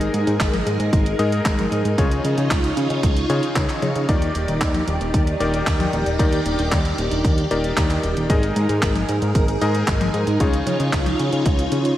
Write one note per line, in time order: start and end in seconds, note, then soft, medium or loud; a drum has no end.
0.00 1.16 G#3 medium
0.00 1.16 D#4 medium
0.00 8.26 D#4 medium
0.00 1.16 G#4 medium
0.00 1.96 G#4 medium
0.00 1.16 A#4 medium
0.00 1.96 A#4 medium
0.00 1.16 D#5 medium
0.00 closed hi-hat soft
0.14 0.25 G#2 medium
0.14 closed hi-hat medium
0.27 0.38 G#2 loud
0.27 closed hi-hat soft
0.40 0.62 G#1 medium
0.40 kick loud
0.40 clap loud
0.40 closed hi-hat medium
0.53 closed hi-hat soft
0.53 high tom medium
0.66 0.77 G#2 medium
0.66 closed hi-hat medium
0.79 0.90 G#2 medium
0.79 closed hi-hat soft
0.93 1.14 G#1 loud
0.93 kick loud
0.93 closed hi-hat medium
1.06 closed hi-hat soft
1.19 1.41 G#2 loud
1.19 1.95 G#3 medium
1.19 1.95 D#4 medium
1.19 1.95 G#4 medium
1.19 1.95 A#4 medium
1.19 1.95 D#5 medium
1.19 closed hi-hat medium
1.32 closed hi-hat soft
1.45 1.67 G#1 medium
1.45 kick loud
1.45 clap loud
1.45 closed hi-hat medium
1.59 closed hi-hat soft
1.59 high tom medium
1.72 1.83 G#2 medium
1.72 closed hi-hat soft
1.85 1.96 G#2 medium
1.85 closed hi-hat soft
1.98 2.20 C#2 medium
1.98 3.27 C#3 medium
1.98 3.27 D#4 medium
1.98 3.27 F4 medium
1.98 4.07 F4 medium
1.98 3.27 G#4 medium
1.98 3.27 C#5 medium
1.98 4.07 C#5 medium
1.98 kick loud
1.98 closed hi-hat medium
2.11 closed hi-hat soft
2.24 2.35 C#3 medium
2.24 closed hi-hat medium
2.38 2.48 C#3 medium
2.38 closed hi-hat soft
2.51 2.72 C#2 medium
2.51 kick loud
2.51 clap loud
2.51 closed hi-hat medium
2.64 closed hi-hat soft
2.77 2.88 C#3 medium
2.77 closed hi-hat medium
2.90 3.01 C#3 medium
2.90 closed hi-hat soft
3.03 3.25 C#2 medium
3.03 kick loud
3.03 closed hi-hat medium
3.17 closed hi-hat soft
3.30 3.40 C#3 medium
3.30 4.06 C#3 medium
3.30 4.06 D#4 medium
3.30 4.06 F4 medium
3.30 4.06 G#4 medium
3.30 4.06 C#5 medium
3.30 closed hi-hat medium
3.43 closed hi-hat soft
3.56 3.67 C#2 loud
3.56 kick medium
3.56 clap loud
3.56 closed hi-hat medium
3.69 clap soft
3.69 closed hi-hat soft
3.82 3.93 C#3 medium
3.82 closed hi-hat soft
3.82 high tom medium
3.95 4.06 C#3 medium
3.95 closed hi-hat soft
4.09 4.30 D#2 loud
4.09 5.37 D#3 medium
4.09 5.37 D#4 medium
4.09 8.26 G4 medium
4.09 5.37 G4 medium
4.09 5.37 A#4 medium
4.09 8.26 D5 medium
4.09 5.37 D5 medium
4.09 kick loud
4.09 closed hi-hat medium
4.22 closed hi-hat soft
4.35 4.46 D#1 medium
4.35 closed hi-hat medium
4.48 4.59 D#1 medium
4.48 closed hi-hat soft
4.61 4.83 D#2 medium
4.61 kick loud
4.61 clap loud
4.61 closed hi-hat medium
4.75 closed hi-hat soft
4.75 high tom medium
4.87 4.98 D#1 medium
4.87 closed hi-hat medium
5.01 5.12 D#1 loud
5.01 closed hi-hat soft
5.14 5.36 D#2 medium
5.14 kick loud
5.14 closed hi-hat medium
5.27 closed hi-hat soft
5.40 5.62 D#1 medium
5.40 6.16 D#3 medium
5.40 6.16 D#4 medium
5.40 6.16 G4 medium
5.40 6.16 A#4 medium
5.40 6.16 D5 medium
5.40 closed hi-hat medium
5.54 closed hi-hat soft
5.67 5.88 D#2 medium
5.67 kick loud
5.67 clap loud
5.67 closed hi-hat medium
5.80 closed hi-hat soft
5.80 high tom medium
5.93 6.04 D#1 medium
5.93 closed hi-hat soft
6.06 6.17 D#1 medium
6.06 closed hi-hat soft
6.19 6.41 D#2 medium
6.19 7.48 D#3 medium
6.19 7.48 D#4 medium
6.19 7.48 G4 medium
6.19 7.48 A#4 medium
6.19 7.48 D5 medium
6.19 kick loud
6.19 closed hi-hat medium
6.32 closed hi-hat soft
6.45 6.56 D#1 medium
6.45 closed hi-hat medium
6.59 6.69 D#1 medium
6.59 closed hi-hat soft
6.72 6.93 D#2 medium
6.72 kick medium
6.72 clap loud
6.72 closed hi-hat medium
6.85 closed hi-hat soft
6.98 7.09 D#1 medium
6.98 closed hi-hat medium
7.11 7.22 D#1 medium
7.11 closed hi-hat soft
7.24 7.46 D#2 loud
7.24 kick loud
7.24 closed hi-hat medium
7.38 closed hi-hat soft
7.51 7.72 D#1 loud
7.51 8.27 D#3 medium
7.51 8.27 D#4 medium
7.51 8.27 G4 medium
7.51 8.27 A#4 medium
7.51 8.27 D5 medium
7.51 closed hi-hat medium
7.64 closed hi-hat soft
7.77 7.99 D#2 medium
7.77 kick medium
7.77 clap loud
7.77 closed hi-hat medium
7.90 clap soft
7.90 closed hi-hat soft
8.03 8.14 D#1 medium
8.03 closed hi-hat soft
8.17 8.27 D#1 medium
8.17 closed hi-hat soft
8.30 8.51 G#1 medium
8.30 9.58 G#3 medium
8.30 11.98 D#4 medium
8.30 9.58 D#4 medium
8.30 10.38 G#4 medium
8.30 9.58 G#4 medium
8.30 10.38 A#4 medium
8.30 9.58 A#4 medium
8.30 9.58 D#5 medium
8.30 kick loud
8.30 closed hi-hat medium
8.43 closed hi-hat soft
8.56 8.67 G#2 medium
8.56 closed hi-hat medium
8.69 8.80 G#2 medium
8.69 closed hi-hat soft
8.82 9.04 G#1 medium
8.82 kick medium
8.82 clap loud
8.82 closed hi-hat medium
8.96 closed hi-hat soft
8.96 high tom medium
9.09 9.20 G#2 medium
9.09 closed hi-hat medium
9.22 9.33 G#2 medium
9.22 closed hi-hat soft
9.35 9.57 G#1 loud
9.35 kick loud
9.35 closed hi-hat medium
9.48 closed hi-hat soft
9.61 9.83 G#2 loud
9.61 10.37 G#3 medium
9.61 10.37 D#4 medium
9.61 10.37 G#4 medium
9.61 10.37 A#4 medium
9.61 10.37 D#5 medium
9.61 closed hi-hat medium
9.75 closed hi-hat soft
9.88 10.09 G#1 medium
9.88 kick medium
9.88 clap loud
9.88 closed hi-hat medium
10.01 closed hi-hat soft
10.01 high tom medium
10.14 10.25 G#2 medium
10.14 closed hi-hat soft
10.27 10.38 G#2 medium
10.27 closed hi-hat soft
10.40 10.62 C#2 medium
10.40 11.69 C#3 medium
10.40 11.69 D#4 medium
10.40 11.69 F4 medium
10.40 11.98 F4 medium
10.40 11.69 G#4 medium
10.40 11.69 C#5 medium
10.40 11.98 C#5 medium
10.40 kick loud
10.40 closed hi-hat medium
10.54 closed hi-hat soft
10.67 10.77 C#3 medium
10.67 closed hi-hat medium
10.67 high tom medium
10.80 10.91 C#3 medium
10.80 closed hi-hat soft
10.93 11.15 C#2 medium
10.93 kick medium
10.93 clap loud
10.93 closed hi-hat medium
11.06 closed hi-hat soft
11.06 high tom medium
11.19 11.30 C#3 medium
11.19 closed hi-hat medium
11.32 11.43 C#3 medium
11.32 closed hi-hat soft
11.46 11.67 C#2 medium
11.46 kick loud
11.46 closed hi-hat medium
11.59 closed hi-hat soft
11.72 11.93 C#3 loud
11.72 closed hi-hat medium
11.85 closed hi-hat soft